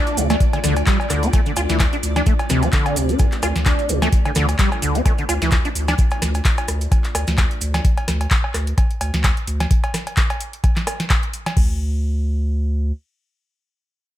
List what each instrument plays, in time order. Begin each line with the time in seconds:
Already playing: string machine A3 D4 F4 D5, acid bass D4
0.07 closed hi-hat, maracas
0.17 sub bass D2, acid bass C3, open hi-hat, maracas
0.30 acid bass A3, snare, closed hi-hat, cowbell, maracas
0.40 kick, closed hi-hat, maracas
0.53 acid bass D3, closed hi-hat, cowbell, maracas
0.64 sub bass D2, acid bass D3, cross-stick, snare, open hi-hat, maracas
0.76 closed hi-hat, cowbell, maracas
0.86 acid bass G3, kick, clap, closed hi-hat, maracas
1.00 cowbell, maracas
1.10 sub bass D2, acid bass D3, cross-stick, clap, open hi-hat, maracas
1.23 acid bass D4, closed hi-hat, maracas
1.33 acid bass A3, kick, closed hi-hat, cowbell, maracas
1.46 acid bass D3, closed hi-hat, maracas
1.56 sub bass D2, acid bass F4, open hi-hat, cowbell, maracas
1.69 sub bass D2, acid bass E3, snare, closed hi-hat, maracas
1.79 acid bass E3, kick, clap, closed hi-hat, cowbell, maracas
1.93 acid bass D4, closed hi-hat, maracas
2.03 sub bass D2, open hi-hat, maracas
2.16 acid bass D4, snare, closed hi-hat, cowbell, maracas
2.26 acid bass A3, kick, closed hi-hat, maracas
2.39 closed hi-hat, cowbell, maracas
2.50 sub bass D2, acid bass C3, cross-stick, snare, open hi-hat, maracas
2.63 acid bass G3, closed hi-hat, cowbell, maracas
2.72 acid bass D3, kick, clap, closed hi-hat, maracas
2.86 closed hi-hat, cowbell, maracas
2.96 sub bass D2, acid bass C3, open hi-hat, maracas
3.09 acid bass D4, closed hi-hat, maracas
3.19 acid bass D2, kick, closed hi-hat, cowbell, maracas
3.32 clap, closed hi-hat, maracas
3.42 sub bass D2, acid bass F4, cross-stick, open hi-hat, cowbell, maracas
3.56 sub bass D2, snare, closed hi-hat, maracas
3.66 acid bass D4, kick, clap, closed hi-hat, cowbell, maracas
3.79 closed hi-hat, maracas
3.89 sub bass D2, acid bass C3, open hi-hat, maracas
4.02 acid bass A3, snare, closed hi-hat, cowbell, maracas
4.12 kick, closed hi-hat, maracas
4.25 acid bass D3, closed hi-hat, cowbell, maracas
4.35 sub bass D2, acid bass D3, cross-stick, snare, open hi-hat, maracas
4.49 closed hi-hat, cowbell, maracas
4.59 acid bass G3, kick, clap, closed hi-hat, maracas
4.72 cowbell, maracas
4.82 sub bass D2, acid bass D3, open hi-hat, maracas
4.95 acid bass D4, closed hi-hat, maracas
5.05 acid bass A3, kick, closed hi-hat, cowbell, maracas
5.18 acid bass D3, closed hi-hat, maracas
5.29 sub bass D2, acid bass F4, open hi-hat, cowbell, maracas
5.42 sub bass D2, acid bass E3, snare, closed hi-hat, maracas
5.51 kick, clap, closed hi-hat, cowbell, maracas
5.65 acid bass D4, closed hi-hat, maracas
5.75 sub bass D2, open hi-hat, maracas
5.88 acid bass D4, snare, closed hi-hat, cowbell, maracas
5.98 kick, closed hi-hat, maracas
6.11 closed hi-hat, cowbell, maracas
6.22 sub bass D2, cross-stick, snare, open hi-hat, maracas
6.35 closed hi-hat, cowbell, maracas
6.45 kick, clap, closed hi-hat, maracas
6.58 closed hi-hat, cowbell, maracas
6.68 sub bass D2, cross-stick, open hi-hat, maracas
6.81 closed hi-hat, maracas
6.92 kick, closed hi-hat, cowbell, maracas
7.04 clap, closed hi-hat, maracas
7.15 sub bass D2, cross-stick, open hi-hat, cowbell, maracas
7.27 sub bass D2, snare, closed hi-hat, maracas
7.38 kick, clap, closed hi-hat, cowbell, maracas
7.51 closed hi-hat, maracas
7.61 sub bass D2, open hi-hat, maracas
7.74 snare, closed hi-hat, cowbell, maracas
7.85 kick, closed hi-hat
7.97 closed hi-hat, cowbell
8.08 sub bass D2, cross-stick, snare, open hi-hat
8.21 closed hi-hat, cowbell
8.31 kick, clap, closed hi-hat
8.44 cowbell
8.54 sub bass D2, cross-stick, clap, open hi-hat
8.67 closed hi-hat
8.78 kick, closed hi-hat, cowbell
8.91 closed hi-hat
9.01 sub bass D2, open hi-hat, cowbell
9.14 sub bass D2, snare, closed hi-hat
9.24 kick, clap, closed hi-hat, cowbell
9.37 closed hi-hat
9.47 sub bass D2, open hi-hat
9.60 snare, closed hi-hat, cowbell
9.71 kick, closed hi-hat
9.84 closed hi-hat, cowbell
9.94 cross-stick, snare, open hi-hat
10.07 closed hi-hat, cowbell
10.17 kick, clap, closed hi-hat
10.30 closed hi-hat, cowbell
10.41 open hi-hat
10.53 closed hi-hat
10.64 kick, closed hi-hat, cowbell
10.76 snare, clap, closed hi-hat
10.87 cross-stick, open hi-hat, cowbell
11.00 snare, closed hi-hat
11.10 kick, clap, closed hi-hat, cowbell
11.23 closed hi-hat
11.34 open hi-hat
11.46 snare, closed hi-hat, cowbell
11.57 sub bass D2, kick, crash